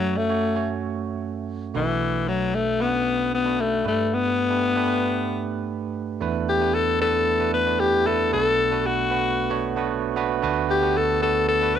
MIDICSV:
0, 0, Header, 1, 3, 480
1, 0, Start_track
1, 0, Key_signature, 2, "minor"
1, 0, Tempo, 526316
1, 1832, Time_signature, 4, 2, 24, 8
1, 10755, End_track
2, 0, Start_track
2, 0, Title_t, "Alto saxophone"
2, 0, Program_c, 0, 65
2, 0, Note_on_c, 0, 54, 101
2, 156, Note_on_c, 0, 57, 96
2, 169, Note_off_c, 0, 54, 0
2, 634, Note_off_c, 0, 57, 0
2, 1606, Note_on_c, 0, 52, 99
2, 2082, Note_on_c, 0, 54, 98
2, 2096, Note_off_c, 0, 52, 0
2, 2326, Note_on_c, 0, 57, 106
2, 2339, Note_off_c, 0, 54, 0
2, 2569, Note_on_c, 0, 59, 116
2, 2582, Note_off_c, 0, 57, 0
2, 3040, Note_off_c, 0, 59, 0
2, 3051, Note_on_c, 0, 59, 106
2, 3289, Note_on_c, 0, 57, 102
2, 3303, Note_off_c, 0, 59, 0
2, 3520, Note_off_c, 0, 57, 0
2, 3538, Note_on_c, 0, 57, 99
2, 3777, Note_on_c, 0, 59, 123
2, 3791, Note_off_c, 0, 57, 0
2, 5204, Note_off_c, 0, 59, 0
2, 5920, Note_on_c, 0, 67, 94
2, 6153, Note_on_c, 0, 69, 106
2, 6167, Note_off_c, 0, 67, 0
2, 6392, Note_off_c, 0, 69, 0
2, 6401, Note_on_c, 0, 69, 109
2, 6843, Note_off_c, 0, 69, 0
2, 6876, Note_on_c, 0, 71, 108
2, 7114, Note_on_c, 0, 67, 104
2, 7128, Note_off_c, 0, 71, 0
2, 7358, Note_on_c, 0, 69, 97
2, 7372, Note_off_c, 0, 67, 0
2, 7595, Note_off_c, 0, 69, 0
2, 7599, Note_on_c, 0, 69, 117
2, 8084, Note_on_c, 0, 66, 93
2, 8098, Note_off_c, 0, 69, 0
2, 9038, Note_off_c, 0, 66, 0
2, 9761, Note_on_c, 0, 67, 103
2, 10007, Note_on_c, 0, 69, 113
2, 10021, Note_off_c, 0, 67, 0
2, 10233, Note_off_c, 0, 69, 0
2, 10239, Note_on_c, 0, 69, 108
2, 10459, Note_off_c, 0, 69, 0
2, 10474, Note_on_c, 0, 69, 116
2, 10717, Note_on_c, 0, 71, 113
2, 10731, Note_off_c, 0, 69, 0
2, 10755, Note_off_c, 0, 71, 0
2, 10755, End_track
3, 0, Start_track
3, 0, Title_t, "Tine electric piano"
3, 0, Program_c, 1, 4
3, 0, Note_on_c, 1, 42, 67
3, 0, Note_on_c, 1, 57, 75
3, 0, Note_on_c, 1, 61, 72
3, 0, Note_on_c, 1, 66, 69
3, 0, Note_on_c, 1, 73, 83
3, 95, Control_c, 1, 64, 127
3, 217, Note_off_c, 1, 57, 0
3, 218, Note_off_c, 1, 61, 0
3, 221, Note_off_c, 1, 66, 0
3, 224, Note_off_c, 1, 73, 0
3, 267, Note_on_c, 1, 57, 73
3, 270, Note_on_c, 1, 61, 66
3, 274, Note_on_c, 1, 66, 72
3, 276, Note_on_c, 1, 73, 83
3, 476, Note_off_c, 1, 57, 0
3, 478, Note_off_c, 1, 61, 0
3, 479, Note_off_c, 1, 66, 0
3, 481, Note_off_c, 1, 73, 0
3, 501, Note_on_c, 1, 57, 76
3, 508, Note_on_c, 1, 61, 70
3, 508, Note_on_c, 1, 66, 68
3, 514, Note_on_c, 1, 73, 84
3, 1333, Note_off_c, 1, 57, 0
3, 1336, Note_off_c, 1, 61, 0
3, 1336, Note_off_c, 1, 66, 0
3, 1339, Note_off_c, 1, 73, 0
3, 1554, Note_off_c, 1, 42, 0
3, 1586, Note_on_c, 1, 57, 79
3, 1592, Note_on_c, 1, 62, 76
3, 1593, Note_on_c, 1, 35, 65
3, 1593, Note_on_c, 1, 47, 65
3, 1594, Note_on_c, 1, 66, 71
3, 1598, Note_on_c, 1, 71, 82
3, 1603, Control_c, 1, 64, 0
3, 1784, Control_c, 1, 64, 127
3, 2415, Note_off_c, 1, 57, 0
3, 2418, Note_off_c, 1, 62, 0
3, 2419, Note_off_c, 1, 66, 0
3, 2421, Note_off_c, 1, 71, 0
3, 2544, Note_on_c, 1, 57, 76
3, 2550, Note_on_c, 1, 61, 55
3, 2553, Note_on_c, 1, 66, 74
3, 2555, Note_on_c, 1, 71, 84
3, 2606, Note_on_c, 1, 62, 71
3, 2608, Note_off_c, 1, 61, 0
3, 3064, Note_off_c, 1, 57, 0
3, 3069, Note_off_c, 1, 66, 0
3, 3070, Note_off_c, 1, 71, 0
3, 3095, Note_off_c, 1, 62, 0
3, 3145, Note_on_c, 1, 57, 80
3, 3145, Note_on_c, 1, 62, 75
3, 3151, Note_on_c, 1, 66, 72
3, 3156, Note_on_c, 1, 71, 87
3, 3476, Note_off_c, 1, 35, 0
3, 3476, Note_off_c, 1, 47, 0
3, 3492, Note_off_c, 1, 57, 0
3, 3495, Note_off_c, 1, 62, 0
3, 3503, Note_on_c, 1, 57, 79
3, 3504, Note_off_c, 1, 71, 0
3, 3506, Note_on_c, 1, 62, 77
3, 3508, Note_on_c, 1, 43, 65
3, 3511, Note_off_c, 1, 66, 0
3, 3511, Note_on_c, 1, 67, 74
3, 3515, Note_on_c, 1, 71, 86
3, 3524, Control_c, 1, 64, 0
3, 3693, Control_c, 1, 64, 127
3, 4024, Note_off_c, 1, 57, 0
3, 4025, Note_off_c, 1, 62, 0
3, 4028, Note_off_c, 1, 67, 0
3, 4030, Note_off_c, 1, 71, 0
3, 4100, Note_on_c, 1, 57, 77
3, 4104, Note_on_c, 1, 62, 72
3, 4108, Note_on_c, 1, 67, 69
3, 4111, Note_on_c, 1, 71, 85
3, 4313, Note_off_c, 1, 57, 0
3, 4314, Note_off_c, 1, 62, 0
3, 4316, Note_off_c, 1, 67, 0
3, 4318, Note_off_c, 1, 71, 0
3, 4339, Note_on_c, 1, 57, 95
3, 4341, Note_on_c, 1, 62, 86
3, 4345, Note_on_c, 1, 67, 85
3, 4350, Note_on_c, 1, 71, 104
3, 5172, Note_off_c, 1, 57, 0
3, 5173, Note_off_c, 1, 62, 0
3, 5175, Note_off_c, 1, 67, 0
3, 5177, Note_off_c, 1, 71, 0
3, 5393, Note_off_c, 1, 43, 0
3, 5661, Note_on_c, 1, 57, 93
3, 5665, Note_on_c, 1, 59, 82
3, 5666, Note_on_c, 1, 40, 85
3, 5666, Note_on_c, 1, 52, 81
3, 5667, Note_on_c, 1, 62, 80
3, 5670, Note_on_c, 1, 64, 88
3, 5673, Note_on_c, 1, 71, 99
3, 5684, Control_c, 1, 64, 0
3, 5843, Control_c, 1, 64, 127
3, 5976, Note_off_c, 1, 57, 0
3, 5978, Note_off_c, 1, 59, 0
3, 5979, Note_off_c, 1, 62, 0
3, 5981, Note_off_c, 1, 64, 0
3, 5982, Note_off_c, 1, 71, 0
3, 6024, Note_on_c, 1, 57, 76
3, 6025, Note_on_c, 1, 59, 74
3, 6028, Note_on_c, 1, 62, 70
3, 6032, Note_on_c, 1, 64, 71
3, 6034, Note_on_c, 1, 71, 86
3, 6337, Note_off_c, 1, 57, 0
3, 6338, Note_off_c, 1, 59, 0
3, 6340, Note_off_c, 1, 62, 0
3, 6342, Note_off_c, 1, 64, 0
3, 6343, Note_off_c, 1, 71, 0
3, 6388, Note_on_c, 1, 57, 81
3, 6392, Note_on_c, 1, 59, 69
3, 6392, Note_on_c, 1, 62, 73
3, 6397, Note_on_c, 1, 64, 72
3, 6399, Note_on_c, 1, 71, 82
3, 6700, Note_off_c, 1, 57, 0
3, 6702, Note_off_c, 1, 59, 0
3, 6702, Note_off_c, 1, 62, 0
3, 6704, Note_off_c, 1, 64, 0
3, 6705, Note_off_c, 1, 71, 0
3, 6746, Note_on_c, 1, 57, 76
3, 6747, Note_on_c, 1, 59, 71
3, 6752, Note_on_c, 1, 62, 72
3, 6754, Note_on_c, 1, 64, 68
3, 6757, Note_on_c, 1, 71, 85
3, 6956, Note_off_c, 1, 57, 0
3, 6956, Note_off_c, 1, 59, 0
3, 6959, Note_off_c, 1, 62, 0
3, 6959, Note_off_c, 1, 64, 0
3, 6961, Note_off_c, 1, 71, 0
3, 6990, Note_on_c, 1, 57, 77
3, 6993, Note_on_c, 1, 59, 72
3, 6996, Note_on_c, 1, 62, 73
3, 6997, Note_on_c, 1, 64, 73
3, 7001, Note_on_c, 1, 71, 91
3, 7301, Note_off_c, 1, 57, 0
3, 7302, Note_off_c, 1, 59, 0
3, 7304, Note_off_c, 1, 62, 0
3, 7304, Note_off_c, 1, 64, 0
3, 7306, Note_off_c, 1, 71, 0
3, 7352, Note_on_c, 1, 57, 76
3, 7353, Note_on_c, 1, 59, 68
3, 7354, Note_on_c, 1, 62, 69
3, 7359, Note_on_c, 1, 64, 72
3, 7362, Note_on_c, 1, 71, 86
3, 7552, Note_off_c, 1, 40, 0
3, 7552, Note_off_c, 1, 52, 0
3, 7558, Note_off_c, 1, 57, 0
3, 7559, Note_off_c, 1, 59, 0
3, 7559, Note_off_c, 1, 62, 0
3, 7562, Note_off_c, 1, 64, 0
3, 7563, Note_off_c, 1, 71, 0
3, 7590, Note_on_c, 1, 57, 82
3, 7590, Note_on_c, 1, 59, 72
3, 7593, Note_on_c, 1, 62, 73
3, 7595, Note_on_c, 1, 47, 68
3, 7596, Note_on_c, 1, 35, 69
3, 7598, Note_on_c, 1, 66, 72
3, 7598, Note_on_c, 1, 71, 84
3, 7602, Control_c, 1, 64, 0
3, 7775, Control_c, 1, 64, 127
3, 7901, Note_off_c, 1, 57, 0
3, 7901, Note_off_c, 1, 59, 0
3, 7902, Note_off_c, 1, 62, 0
3, 7905, Note_off_c, 1, 66, 0
3, 7905, Note_off_c, 1, 71, 0
3, 7945, Note_on_c, 1, 57, 80
3, 7950, Note_on_c, 1, 59, 67
3, 7951, Note_on_c, 1, 62, 72
3, 7955, Note_on_c, 1, 66, 75
3, 7957, Note_on_c, 1, 71, 86
3, 8258, Note_off_c, 1, 57, 0
3, 8261, Note_off_c, 1, 59, 0
3, 8261, Note_off_c, 1, 62, 0
3, 8263, Note_off_c, 1, 66, 0
3, 8264, Note_off_c, 1, 71, 0
3, 8302, Note_on_c, 1, 57, 78
3, 8306, Note_on_c, 1, 59, 74
3, 8306, Note_on_c, 1, 62, 68
3, 8311, Note_on_c, 1, 66, 75
3, 8313, Note_on_c, 1, 71, 88
3, 8617, Note_off_c, 1, 57, 0
3, 8619, Note_off_c, 1, 59, 0
3, 8619, Note_off_c, 1, 62, 0
3, 8621, Note_off_c, 1, 66, 0
3, 8622, Note_off_c, 1, 71, 0
3, 8664, Note_on_c, 1, 57, 95
3, 8666, Note_on_c, 1, 59, 87
3, 8669, Note_on_c, 1, 62, 85
3, 8672, Note_on_c, 1, 66, 88
3, 8674, Note_on_c, 1, 73, 106
3, 8875, Note_off_c, 1, 57, 0
3, 8876, Note_off_c, 1, 59, 0
3, 8877, Note_off_c, 1, 62, 0
3, 8878, Note_off_c, 1, 66, 0
3, 8879, Note_off_c, 1, 73, 0
3, 8902, Note_on_c, 1, 57, 93
3, 8906, Note_on_c, 1, 59, 90
3, 8910, Note_on_c, 1, 62, 85
3, 8912, Note_on_c, 1, 66, 84
3, 8915, Note_on_c, 1, 71, 101
3, 9217, Note_off_c, 1, 57, 0
3, 9219, Note_off_c, 1, 59, 0
3, 9220, Note_off_c, 1, 62, 0
3, 9222, Note_off_c, 1, 66, 0
3, 9223, Note_off_c, 1, 71, 0
3, 9265, Note_on_c, 1, 57, 90
3, 9269, Note_on_c, 1, 59, 85
3, 9269, Note_on_c, 1, 62, 90
3, 9273, Note_on_c, 1, 66, 84
3, 9276, Note_on_c, 1, 71, 106
3, 9475, Note_off_c, 1, 57, 0
3, 9477, Note_off_c, 1, 35, 0
3, 9477, Note_off_c, 1, 47, 0
3, 9477, Note_off_c, 1, 59, 0
3, 9477, Note_off_c, 1, 62, 0
3, 9479, Note_off_c, 1, 66, 0
3, 9481, Note_off_c, 1, 71, 0
3, 9503, Note_on_c, 1, 57, 94
3, 9506, Note_on_c, 1, 59, 88
3, 9509, Note_on_c, 1, 50, 84
3, 9510, Note_on_c, 1, 62, 88
3, 9511, Note_on_c, 1, 38, 86
3, 9513, Note_on_c, 1, 66, 89
3, 9514, Note_on_c, 1, 71, 107
3, 9525, Control_c, 1, 64, 0
3, 9659, Control_c, 1, 64, 127
3, 9817, Note_off_c, 1, 57, 0
3, 9819, Note_off_c, 1, 59, 0
3, 9821, Note_off_c, 1, 62, 0
3, 9822, Note_off_c, 1, 66, 0
3, 9823, Note_off_c, 1, 71, 0
3, 9865, Note_on_c, 1, 57, 83
3, 9868, Note_on_c, 1, 59, 76
3, 9869, Note_on_c, 1, 62, 75
3, 9873, Note_on_c, 1, 66, 72
3, 9874, Note_on_c, 1, 71, 88
3, 10178, Note_off_c, 1, 57, 0
3, 10180, Note_off_c, 1, 59, 0
3, 10180, Note_off_c, 1, 62, 0
3, 10182, Note_off_c, 1, 66, 0
3, 10183, Note_off_c, 1, 71, 0
3, 10225, Note_on_c, 1, 57, 76
3, 10227, Note_on_c, 1, 59, 71
3, 10230, Note_on_c, 1, 62, 74
3, 10235, Note_on_c, 1, 66, 72
3, 10236, Note_on_c, 1, 71, 83
3, 10538, Note_off_c, 1, 57, 0
3, 10539, Note_off_c, 1, 59, 0
3, 10541, Note_off_c, 1, 62, 0
3, 10543, Note_off_c, 1, 66, 0
3, 10544, Note_off_c, 1, 71, 0
3, 10592, Note_on_c, 1, 57, 81
3, 10592, Note_on_c, 1, 59, 72
3, 10596, Note_on_c, 1, 62, 72
3, 10600, Note_on_c, 1, 66, 75
3, 10601, Note_on_c, 1, 71, 92
3, 10755, Note_off_c, 1, 38, 0
3, 10755, Note_off_c, 1, 50, 0
3, 10755, Note_off_c, 1, 57, 0
3, 10755, Note_off_c, 1, 59, 0
3, 10755, Note_off_c, 1, 62, 0
3, 10755, Note_off_c, 1, 66, 0
3, 10755, Note_off_c, 1, 71, 0
3, 10755, End_track
0, 0, End_of_file